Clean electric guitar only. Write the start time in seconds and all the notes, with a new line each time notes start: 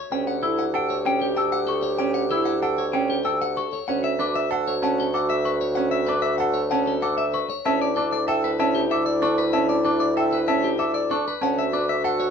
Already playing: C#5
0.12 G5
0.27 F#5
0.43 A4
0.59 F#5
0.75 G5
0.90 C#5
1.06 G5
1.21 G4
1.37 G5
1.52 F#5
1.67 A4
1.83 C#5
1.99 G5
2.14 F#5
2.31 A4
2.45 F#5
2.63 G5
2.78 C#5
2.93 G5
3.10 G4
3.25 G5
3.42 F#5
3.57 A4
3.73 C#5
3.88 F#5
4.04 E5
4.20 B4
4.35 E5
4.53 F#5
4.68 C#5
4.83 F#5
5.00 A4
5.15 F#5
5.30 E5
5.46 B4
5.61 C#5
5.75 F#5
5.91 E5
6.07 B4
6.22 E5
6.38 F#5
6.54 C#5
6.71 F#5
6.87 A4
7.02 F#5
7.18 E5
7.34 B4
7.50 C#5
7.66 E5
7.82 D5
7.96 A4
8.12 D5
8.28 E5
8.44 B4
8.60 E5
8.75 G4
8.91 E5
9.06 D5
9.23 A4
9.38 B4
9.53 E5
9.69 D5
9.85 A4
10.00 D5
10.17 E5
10.33 B4
10.48 E5
10.64 G4
10.79 E5
10.94 D5
11.11 A4
11.28 B4
11.43 F#5
11.59 E5
11.74 B4
11.89 E5
12.05 F#5
12.20 C#5